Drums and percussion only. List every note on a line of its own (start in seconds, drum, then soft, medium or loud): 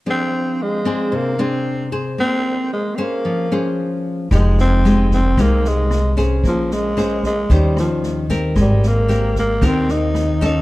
4.31 kick medium
4.31 cross-stick medium
4.31 snare soft
4.58 snare soft
4.85 snare soft
5.11 kick soft
5.11 snare soft
5.37 kick medium
5.37 cross-stick medium
5.37 snare soft
5.65 snare soft
5.91 cross-stick medium
5.91 snare soft
6.17 kick soft
6.17 snare soft
6.44 kick medium
6.44 snare soft
6.71 snare soft
6.97 cross-stick medium
6.97 snare soft
7.23 kick soft
7.23 snare soft
7.50 kick medium
7.50 snare soft
7.77 cross-stick medium
7.77 snare soft
8.03 snare soft
8.29 kick soft
8.29 snare soft
8.56 kick medium
8.56 cross-stick medium
8.56 snare soft
8.83 snare soft
9.09 snare soft
9.35 kick soft
9.35 snare soft
9.61 kick medium
9.61 cross-stick medium
9.61 snare soft
9.88 snare soft
10.15 cross-stick medium
10.15 snare soft
10.41 kick soft
10.41 snare soft